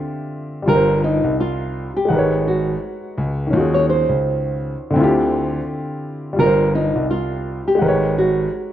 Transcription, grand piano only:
0, 0, Header, 1, 2, 480
1, 0, Start_track
1, 0, Tempo, 714286
1, 452, Time_signature, 4, 2, 24, 8
1, 5865, End_track
2, 0, Start_track
2, 0, Title_t, "Grand piano"
2, 0, Program_c, 0, 0
2, 455, Note_on_c, 0, 31, 117
2, 792, Note_off_c, 0, 31, 0
2, 831, Note_on_c, 0, 36, 84
2, 1260, Note_off_c, 0, 36, 0
2, 1412, Note_on_c, 0, 32, 98
2, 1842, Note_off_c, 0, 32, 0
2, 2135, Note_on_c, 0, 37, 94
2, 2348, Note_off_c, 0, 37, 0
2, 2373, Note_on_c, 0, 39, 104
2, 2711, Note_off_c, 0, 39, 0
2, 2749, Note_on_c, 0, 37, 81
2, 3179, Note_off_c, 0, 37, 0
2, 3333, Note_on_c, 0, 38, 101
2, 3762, Note_off_c, 0, 38, 0
2, 4293, Note_on_c, 0, 31, 111
2, 4630, Note_off_c, 0, 31, 0
2, 4672, Note_on_c, 0, 36, 80
2, 5100, Note_off_c, 0, 36, 0
2, 5254, Note_on_c, 0, 32, 100
2, 5683, Note_off_c, 0, 32, 0
2, 5865, End_track
0, 0, End_of_file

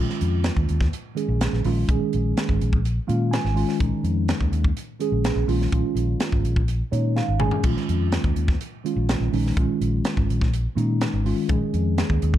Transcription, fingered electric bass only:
0, 0, Header, 1, 2, 480
1, 0, Start_track
1, 0, Key_signature, -5, "minor"
1, 0, Tempo, 480769
1, 1880, Time_signature, 4, 2, 24, 8
1, 12361, End_track
2, 0, Start_track
2, 0, Title_t, "Fingered electric bass"
2, 0, Program_c, 0, 33
2, 214, Note_on_c, 0, 41, 79
2, 485, Note_off_c, 0, 41, 0
2, 571, Note_on_c, 0, 39, 87
2, 659, Note_off_c, 0, 39, 0
2, 699, Note_on_c, 0, 39, 82
2, 876, Note_off_c, 0, 39, 0
2, 1283, Note_on_c, 0, 34, 78
2, 1466, Note_off_c, 0, 34, 0
2, 1526, Note_on_c, 0, 34, 81
2, 1616, Note_off_c, 0, 34, 0
2, 1649, Note_on_c, 0, 34, 93
2, 1829, Note_off_c, 0, 34, 0
2, 1883, Note_on_c, 0, 34, 91
2, 1974, Note_off_c, 0, 34, 0
2, 2139, Note_on_c, 0, 34, 81
2, 2315, Note_off_c, 0, 34, 0
2, 2490, Note_on_c, 0, 32, 79
2, 2577, Note_off_c, 0, 32, 0
2, 2610, Note_on_c, 0, 34, 78
2, 2972, Note_off_c, 0, 34, 0
2, 3087, Note_on_c, 0, 46, 93
2, 3359, Note_off_c, 0, 46, 0
2, 3439, Note_on_c, 0, 32, 85
2, 3622, Note_off_c, 0, 32, 0
2, 3802, Note_on_c, 0, 34, 91
2, 3892, Note_off_c, 0, 34, 0
2, 4029, Note_on_c, 0, 41, 75
2, 4308, Note_off_c, 0, 41, 0
2, 4396, Note_on_c, 0, 39, 92
2, 4488, Note_off_c, 0, 39, 0
2, 4511, Note_on_c, 0, 39, 83
2, 4696, Note_off_c, 0, 39, 0
2, 5112, Note_on_c, 0, 34, 77
2, 5297, Note_off_c, 0, 34, 0
2, 5346, Note_on_c, 0, 34, 85
2, 5441, Note_off_c, 0, 34, 0
2, 5466, Note_on_c, 0, 34, 86
2, 5653, Note_off_c, 0, 34, 0
2, 5711, Note_on_c, 0, 34, 98
2, 5805, Note_off_c, 0, 34, 0
2, 5941, Note_on_c, 0, 34, 75
2, 6129, Note_off_c, 0, 34, 0
2, 6308, Note_on_c, 0, 32, 79
2, 6402, Note_off_c, 0, 32, 0
2, 6426, Note_on_c, 0, 34, 79
2, 6796, Note_off_c, 0, 34, 0
2, 6912, Note_on_c, 0, 46, 86
2, 7188, Note_off_c, 0, 46, 0
2, 7272, Note_on_c, 0, 32, 80
2, 7456, Note_off_c, 0, 32, 0
2, 7627, Note_on_c, 0, 34, 93
2, 7722, Note_off_c, 0, 34, 0
2, 7876, Note_on_c, 0, 41, 75
2, 8150, Note_off_c, 0, 41, 0
2, 8229, Note_on_c, 0, 39, 90
2, 8322, Note_off_c, 0, 39, 0
2, 8344, Note_on_c, 0, 39, 78
2, 8531, Note_off_c, 0, 39, 0
2, 8948, Note_on_c, 0, 34, 77
2, 9134, Note_off_c, 0, 34, 0
2, 9186, Note_on_c, 0, 34, 76
2, 9280, Note_off_c, 0, 34, 0
2, 9313, Note_on_c, 0, 34, 79
2, 9497, Note_off_c, 0, 34, 0
2, 9551, Note_on_c, 0, 34, 90
2, 9644, Note_off_c, 0, 34, 0
2, 9795, Note_on_c, 0, 34, 74
2, 9978, Note_off_c, 0, 34, 0
2, 10154, Note_on_c, 0, 32, 82
2, 10246, Note_off_c, 0, 32, 0
2, 10273, Note_on_c, 0, 34, 78
2, 10642, Note_off_c, 0, 34, 0
2, 10748, Note_on_c, 0, 46, 88
2, 11027, Note_off_c, 0, 46, 0
2, 11115, Note_on_c, 0, 32, 92
2, 11300, Note_off_c, 0, 32, 0
2, 11473, Note_on_c, 0, 34, 94
2, 11567, Note_off_c, 0, 34, 0
2, 11718, Note_on_c, 0, 41, 82
2, 11994, Note_off_c, 0, 41, 0
2, 12079, Note_on_c, 0, 39, 87
2, 12171, Note_off_c, 0, 39, 0
2, 12207, Note_on_c, 0, 39, 85
2, 12361, Note_off_c, 0, 39, 0
2, 12361, End_track
0, 0, End_of_file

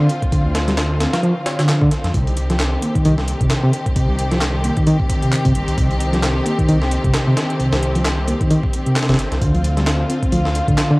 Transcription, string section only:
0, 0, Header, 1, 2, 480
1, 0, Start_track
1, 0, Key_signature, -3, "minor"
1, 0, Tempo, 454545
1, 341, Time_signature, 4, 2, 24, 8
1, 11613, End_track
2, 0, Start_track
2, 0, Title_t, "String section"
2, 0, Program_c, 0, 48
2, 0, Note_on_c, 0, 50, 82
2, 0, Note_on_c, 0, 60, 74
2, 0, Note_on_c, 0, 65, 92
2, 2219, Note_off_c, 0, 50, 0
2, 2219, Note_off_c, 0, 60, 0
2, 2220, Note_off_c, 0, 65, 0
2, 2256, Note_on_c, 0, 51, 82
2, 2256, Note_on_c, 0, 67, 90
2, 2258, Note_on_c, 0, 60, 74
2, 9896, Note_off_c, 0, 51, 0
2, 9896, Note_off_c, 0, 67, 0
2, 9943, Note_on_c, 0, 50, 81
2, 9943, Note_on_c, 0, 65, 90
2, 11613, Note_off_c, 0, 50, 0
2, 11613, Note_off_c, 0, 60, 0
2, 11613, Note_off_c, 0, 65, 0
2, 11613, End_track
0, 0, End_of_file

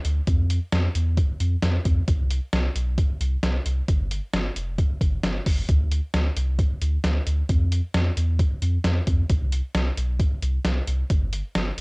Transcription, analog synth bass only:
0, 0, Header, 1, 2, 480
1, 0, Start_track
1, 0, Key_signature, 0, "major"
1, 0, Tempo, 451128
1, 292, Time_signature, 4, 2, 24, 8
1, 12565, End_track
2, 0, Start_track
2, 0, Title_t, "Analog synth bass"
2, 0, Program_c, 0, 38
2, 51, Note_on_c, 0, 38, 100
2, 220, Note_off_c, 0, 38, 0
2, 292, Note_on_c, 0, 41, 105
2, 628, Note_off_c, 0, 41, 0
2, 772, Note_on_c, 0, 41, 97
2, 940, Note_off_c, 0, 41, 0
2, 1012, Note_on_c, 0, 40, 89
2, 1264, Note_off_c, 0, 40, 0
2, 1491, Note_on_c, 0, 41, 99
2, 1659, Note_off_c, 0, 41, 0
2, 1731, Note_on_c, 0, 41, 100
2, 1899, Note_off_c, 0, 41, 0
2, 1972, Note_on_c, 0, 41, 106
2, 2140, Note_off_c, 0, 41, 0
2, 2213, Note_on_c, 0, 36, 97
2, 2548, Note_off_c, 0, 36, 0
2, 2691, Note_on_c, 0, 36, 106
2, 2859, Note_off_c, 0, 36, 0
2, 2931, Note_on_c, 0, 35, 92
2, 3183, Note_off_c, 0, 35, 0
2, 3412, Note_on_c, 0, 36, 110
2, 3580, Note_off_c, 0, 36, 0
2, 3652, Note_on_c, 0, 36, 100
2, 3820, Note_off_c, 0, 36, 0
2, 3891, Note_on_c, 0, 36, 94
2, 4059, Note_off_c, 0, 36, 0
2, 4132, Note_on_c, 0, 31, 116
2, 4468, Note_off_c, 0, 31, 0
2, 4611, Note_on_c, 0, 31, 106
2, 4779, Note_off_c, 0, 31, 0
2, 4852, Note_on_c, 0, 29, 96
2, 5104, Note_off_c, 0, 29, 0
2, 5329, Note_on_c, 0, 31, 102
2, 5498, Note_off_c, 0, 31, 0
2, 5572, Note_on_c, 0, 31, 95
2, 5740, Note_off_c, 0, 31, 0
2, 5813, Note_on_c, 0, 31, 92
2, 5980, Note_off_c, 0, 31, 0
2, 6053, Note_on_c, 0, 38, 99
2, 6388, Note_off_c, 0, 38, 0
2, 6533, Note_on_c, 0, 38, 95
2, 6700, Note_off_c, 0, 38, 0
2, 6773, Note_on_c, 0, 36, 96
2, 7024, Note_off_c, 0, 36, 0
2, 7253, Note_on_c, 0, 38, 107
2, 7420, Note_off_c, 0, 38, 0
2, 7492, Note_on_c, 0, 38, 103
2, 7660, Note_off_c, 0, 38, 0
2, 7732, Note_on_c, 0, 38, 100
2, 7900, Note_off_c, 0, 38, 0
2, 7973, Note_on_c, 0, 41, 111
2, 8308, Note_off_c, 0, 41, 0
2, 8453, Note_on_c, 0, 41, 101
2, 8620, Note_off_c, 0, 41, 0
2, 8692, Note_on_c, 0, 40, 91
2, 8944, Note_off_c, 0, 40, 0
2, 9171, Note_on_c, 0, 41, 105
2, 9339, Note_off_c, 0, 41, 0
2, 9411, Note_on_c, 0, 41, 107
2, 9579, Note_off_c, 0, 41, 0
2, 9653, Note_on_c, 0, 41, 107
2, 9820, Note_off_c, 0, 41, 0
2, 9892, Note_on_c, 0, 36, 99
2, 10228, Note_off_c, 0, 36, 0
2, 10371, Note_on_c, 0, 36, 100
2, 10539, Note_off_c, 0, 36, 0
2, 10611, Note_on_c, 0, 35, 90
2, 10863, Note_off_c, 0, 35, 0
2, 11092, Note_on_c, 0, 36, 108
2, 11260, Note_off_c, 0, 36, 0
2, 11330, Note_on_c, 0, 36, 103
2, 11499, Note_off_c, 0, 36, 0
2, 11571, Note_on_c, 0, 36, 95
2, 11739, Note_off_c, 0, 36, 0
2, 11812, Note_on_c, 0, 31, 109
2, 12148, Note_off_c, 0, 31, 0
2, 12292, Note_on_c, 0, 31, 98
2, 12460, Note_off_c, 0, 31, 0
2, 12531, Note_on_c, 0, 29, 91
2, 12565, Note_off_c, 0, 29, 0
2, 12565, End_track
0, 0, End_of_file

